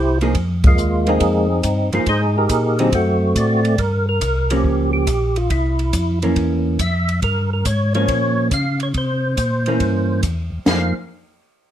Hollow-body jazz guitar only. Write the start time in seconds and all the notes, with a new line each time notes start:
0.22 F3 A#3 D#4 G#4
1.08 F3 A#3 D#4 G#4
1.93 F3 A#3 D#4 G#4
2.80 D3 F#3 C4 D#4
4.51 F3 A#3 C#4
6.23 E3 A#3 C#4
7.95 F3 A#3 C#4
9.68 E3 A#3 C#4
10.67 F3 A#3 D#4 G#4